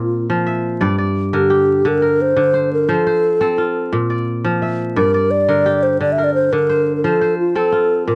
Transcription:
Already playing: kora A#2 C4 F4 C5, alto flute F4
0.30 kora F3
0.46 kora E5
0.81 kora G2 D5
0.98 kora D5
1.33 kora D3 A#4, alto flute G4
1.50 kora G4
1.85 kora D3, alto flute A#4
2.02 kora A#4
2.22 alto flute C5
2.36 kora D3
2.54 kora C5
2.74 alto flute A#4
2.89 kora F3 C5, alto flute A4
3.07 kora C5
3.41 kora C4 A4
3.58 kora F4
3.93 kora A#2
4.10 kora D5
4.45 kora F3
4.62 kora E5
4.96 kora G2 D5, alto flute A#4
5.14 kora D5
5.31 alto flute D5
5.48 kora D3 A#4
5.66 kora G4
5.83 alto flute C5
6.01 kora D3, alto flute D5
6.12 alto flute E5
6.18 kora A#4
6.24 alto flute D5
6.34 alto flute C5
6.53 kora D3, alto flute A#4
6.69 kora C5
6.96 alto flute A#4
7.04 kora F3 C5, alto flute A4
7.21 kora C5
7.39 alto flute F4
7.55 kora C4 A4, alto flute A4
7.72 kora F4
8.07 kora A#2, alto flute A#4

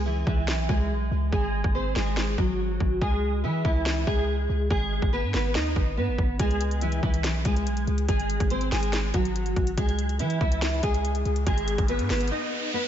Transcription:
Already playing: 808-style bass C#2
0.06 nylon-string guitar E3 E4
0.27 808-style bass C#2, nylon-string guitar E3 E4, kick
0.48 808-style bass B1, snare
0.69 808-style bass C#2, nylon-string guitar G#3 G#4, kick
0.90 808-style bass B1
1.11 808-style bass C#2
1.32 808-style bass G#1, nylon-string guitar G#3 G#4, kick
1.64 808-style bass G#1, kick
1.75 nylon-string guitar C4 C5
1.96 808-style bass G#1, nylon-string guitar G#3 G#4, snare
2.17 snare
2.38 808-style bass G#1, nylon-string guitar F#3 F#4, kick
2.80 808-style bass G#1, kick
3.02 808-style bass C#2, nylon-string guitar G#3 G#4, kick
3.44 808-style bass E3, nylon-string guitar E3 E4
3.65 808-style bass C#2, nylon-string guitar E3 E4, kick
3.86 snare
4.07 808-style bass C#2, nylon-string guitar G#3 G#4, kick
4.49 808-style bass C#2
4.71 808-style bass G#1, nylon-string guitar G#3 G#4, kick
5.02 808-style bass G#1, kick
5.13 nylon-string guitar B3 B4
5.23 808-style bass G#2
5.34 808-style bass G#1, nylon-string guitar B3 B4, snare
5.55 808-style bass D#2, nylon-string guitar D#4 D#5, snare
5.76 808-style bass G#1, kick
5.97 808-style bass G#2, nylon-string guitar B3 B4
6.08 808-style bass G#1
6.18 808-style bass G#1, kick
6.39 808-style bass C#2, nylon-string guitar G#3 G#4, kick, closed hi-hat
6.51 closed hi-hat
6.61 closed hi-hat
6.71 closed hi-hat
6.81 nylon-string guitar E3 E4, closed hi-hat
6.92 closed hi-hat
7.03 808-style bass C#2, nylon-string guitar E3 E4, kick
7.14 closed hi-hat
7.24 808-style bass B1, snare, closed hi-hat
7.45 808-style bass C#2, nylon-string guitar G#3 G#4, kick, closed hi-hat
7.56 closed hi-hat
7.66 808-style bass B1, closed hi-hat
7.77 closed hi-hat
7.87 808-style bass C#2, closed hi-hat
7.98 closed hi-hat
8.09 808-style bass G#1, nylon-string guitar G#3 G#4, kick, closed hi-hat
8.20 closed hi-hat
8.30 closed hi-hat
8.40 808-style bass G#1, kick, closed hi-hat
8.50 nylon-string guitar C4 C5, closed hi-hat
8.61 closed hi-hat
8.72 808-style bass G#1, nylon-string guitar G#3 G#4, snare, open hi-hat
8.83 closed hi-hat
8.93 snare, closed hi-hat
9.14 808-style bass G#1, nylon-string guitar F#3 F#4, kick, closed hi-hat
9.25 closed hi-hat
9.36 closed hi-hat
9.46 closed hi-hat
9.56 808-style bass G#1, kick, closed hi-hat
9.67 closed hi-hat
9.77 808-style bass C#2, nylon-string guitar G#3 G#4, kick, closed hi-hat, riser
9.89 closed hi-hat
9.99 closed hi-hat
10.09 closed hi-hat
10.19 808-style bass E3, nylon-string guitar E3 E4, closed hi-hat
10.30 closed hi-hat
10.41 808-style bass C#2, nylon-string guitar E3 E4, kick
10.52 closed hi-hat
10.62 snare, closed hi-hat
10.83 808-style bass C#2, nylon-string guitar G#3 G#4, kick, closed hi-hat
10.94 closed hi-hat
11.05 closed hi-hat
11.15 closed hi-hat
11.25 808-style bass C#2, closed hi-hat
11.36 closed hi-hat
11.47 808-style bass G#1, nylon-string guitar G#3 G#4, kick, closed hi-hat
11.58 closed hi-hat
11.68 closed hi-hat
11.78 808-style bass G#1, kick, closed hi-hat
11.88 nylon-string guitar B3 B4, closed hi-hat
11.99 808-style bass G#2, closed hi-hat
12.10 808-style bass G#1, nylon-string guitar B3 B4, snare, open hi-hat
12.21 closed hi-hat
12.28 nylon-string guitar D#4, closed hi-hat
12.32 nylon-string guitar D#5
12.73 nylon-string guitar B3 B4

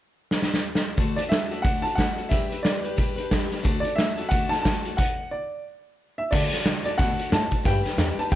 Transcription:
0.31 snare
0.42 snare
0.54 snare
0.75 snare
0.97 steel-string acoustic guitar D3 A3 D4 F#4 A4, kick, closed hi-hat
1.16 steel-string acoustic guitar F#4 A4, upright piano D5, closed hi-hat
1.20 steel-string acoustic guitar D4
1.29 steel-string acoustic guitar A3 D4 F#4 A4, upright piano E5, snare, closed hi-hat
1.49 steel-string acoustic guitar D4 F#4 A4, closed hi-hat
1.62 steel-string acoustic guitar D3 A3 D4 F#4 A4, upright piano F#5, kick, closed hi-hat
1.82 steel-string acoustic guitar F#4 A4, upright piano A5, closed hi-hat
1.87 steel-string acoustic guitar D4
1.95 steel-string acoustic guitar A3 D4 F#4, upright piano F#5, kick, snare, closed hi-hat
2.00 steel-string acoustic guitar A4
2.16 steel-string acoustic guitar D4 F#4 A4, closed hi-hat
2.29 steel-string acoustic guitar G3 D4 G4 B4, upright piano E5, kick, snare, closed hi-hat
2.50 steel-string acoustic guitar G4 B4, closed hi-hat
2.54 steel-string acoustic guitar D4
2.63 steel-string acoustic guitar G3 D4, upright piano D5, snare, closed hi-hat
2.67 steel-string acoustic guitar G4 B4
2.83 steel-string acoustic guitar D4 G4 B4, closed hi-hat
2.96 steel-string acoustic guitar G3 D4 G4 B4, kick, closed hi-hat
3.16 steel-string acoustic guitar D4 G4 B4, closed hi-hat
3.31 steel-string acoustic guitar G3 D4 G4 B4, kick, snare, closed hi-hat
3.50 steel-string acoustic guitar D4 G4 B4, snare, closed hi-hat
3.63 steel-string acoustic guitar D3 A3 D4 F#4 A4, kick, closed hi-hat
3.80 steel-string acoustic guitar A4, upright piano D5
3.85 steel-string acoustic guitar D4 F#4, closed hi-hat
3.96 steel-string acoustic guitar A3 D4 F#4, upright piano E5, snare, closed hi-hat
4.00 steel-string acoustic guitar A4
4.17 steel-string acoustic guitar D4 F#4 A4, closed hi-hat
4.29 steel-string acoustic guitar D3 A3, upright piano F#5, kick, closed hi-hat
4.33 steel-string acoustic guitar D4 F#4 A4
4.49 steel-string acoustic guitar F#4 A4, upright piano A5, snare, closed hi-hat
4.55 steel-string acoustic guitar D4
4.62 steel-string acoustic guitar A3, upright piano A5, kick, snare, closed hi-hat
4.66 steel-string acoustic guitar D4 F#4 A4
4.84 steel-string acoustic guitar D4 F#4 A4, closed hi-hat
4.97 upright piano F#5, kick, crash
5.31 upright piano D5
6.18 upright piano E5
6.31 steel-string acoustic guitar D3 A3 D4 F#4 A4, upright bass D3, upright piano D5, kick, crash
6.51 steel-string acoustic guitar D4 F#4 A4, muted upright bass stroke, snare, closed hi-hat
6.64 upright bass C#3, steel-string acoustic guitar A3 D4 F#4 A4, snare, closed hi-hat
6.84 steel-string acoustic guitar D4 F#4 A4, upright piano D5, muted upright bass stroke, closed hi-hat
6.98 upright bass B2, steel-string acoustic guitar D3 A3 D4 F#4 A4, upright piano F#5, kick, snare, closed hi-hat
7.17 steel-string acoustic guitar D4 F#4 A4, muted upright bass stroke, closed hi-hat
7.30 upright bass A2, steel-string acoustic guitar A3 D4 F#4 A4, upright piano A5, snare, closed hi-hat
7.49 steel-string acoustic guitar D4 F#4 A4, muted upright bass stroke, kick, closed hi-hat
7.63 upright bass G2, steel-string acoustic guitar G3 D4 G4 B4, upright piano G5, kick, snare, closed hi-hat
7.83 steel-string acoustic guitar D4 G4 B4, muted upright bass stroke, snare, closed hi-hat
7.95 upright bass E2, steel-string acoustic guitar G3 D4 G4, snare, closed hi-hat
8.00 steel-string acoustic guitar B4
8.17 steel-string acoustic guitar D4 G4 B4, upright piano A5, muted upright bass stroke, closed hi-hat
8.30 upright bass D2, steel-string acoustic guitar G3 D4 G4 B4, upright piano G5, kick, snare, closed hi-hat

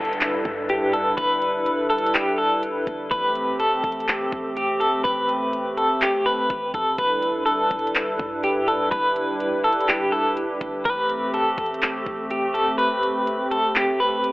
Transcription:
Already playing: 808-style bass G1, analog synth pad G3 D4 E4 A4 B4, clean electric guitar A4, downlifter
0.05 closed hi-hat
0.13 closed hi-hat
0.21 clap, closed hi-hat
0.45 808-style bass G2, kick
0.69 clean electric guitar G4, closed hi-hat
0.93 clean electric guitar A4, closed hi-hat
1.17 808-style bass G1, clean electric guitar B4, kick, closed hi-hat
1.42 closed hi-hat
1.66 closed hi-hat
1.90 clean electric guitar A4, closed hi-hat
1.98 closed hi-hat
2.06 closed hi-hat
2.14 clean electric guitar G4, clap, closed hi-hat
2.38 clean electric guitar A4
2.63 closed hi-hat
2.87 808-style bass G1, kick, closed hi-hat
3.11 808-style bass A1, analog synth pad A3 C4 G4, clean electric guitar B4, kick, closed hi-hat
3.35 closed hi-hat
3.60 clean electric guitar A4, closed hi-hat
3.84 808-style bass A1, kick, closed hi-hat
3.92 closed hi-hat
4.00 closed hi-hat
4.08 clap, closed hi-hat
4.32 808-style bass A1, kick
4.57 clean electric guitar G4, closed hi-hat
4.80 clean electric guitar A4, closed hi-hat
5.04 808-style bass A1, clean electric guitar B4, kick, closed hi-hat
5.29 closed hi-hat
5.53 closed hi-hat
5.77 clean electric guitar A4, closed hi-hat
6.01 clean electric guitar G4, clap, closed hi-hat
6.26 clean electric guitar B4
6.50 808-style bass A1, kick, closed hi-hat
6.74 808-style bass A1, clean electric guitar A4, kick, closed hi-hat
6.98 808-style bass G1, analog synth pad G3 D4 E4 A4 B4, clean electric guitar B4, kick, closed hi-hat
7.22 closed hi-hat
7.46 clean electric guitar A4, closed hi-hat
7.71 808-style bass G1, kick, closed hi-hat
7.79 closed hi-hat
7.87 closed hi-hat
7.95 clap, closed hi-hat
8.19 808-style bass G2, kick
8.44 clean electric guitar G4, closed hi-hat
8.68 clean electric guitar A4, closed hi-hat
8.91 808-style bass G1, analog synth pad G4, clean electric guitar B4, kick, closed hi-hat
9.16 closed hi-hat
9.40 closed hi-hat
9.64 clean electric guitar A4, closed hi-hat
9.73 closed hi-hat
9.81 closed hi-hat
9.89 clean electric guitar G4, clap, closed hi-hat
10.12 clean electric guitar A4
10.37 closed hi-hat
10.61 808-style bass G1, kick, closed hi-hat
10.85 808-style bass A1, analog synth pad A3 C4, clean electric guitar B4, kick, closed hi-hat
11.10 closed hi-hat
11.34 clean electric guitar A4, closed hi-hat
11.58 808-style bass A1, kick, closed hi-hat
11.66 closed hi-hat
11.74 closed hi-hat
11.82 clap, closed hi-hat
12.06 808-style bass A1, kick
12.31 clean electric guitar G4, closed hi-hat
12.54 clean electric guitar A4, closed hi-hat
12.78 clean electric guitar B4, closed hi-hat
13.03 closed hi-hat
13.27 closed hi-hat
13.51 clean electric guitar A4, closed hi-hat
13.75 clean electric guitar G4, clap, closed hi-hat
14.00 clean electric guitar B4
14.24 closed hi-hat

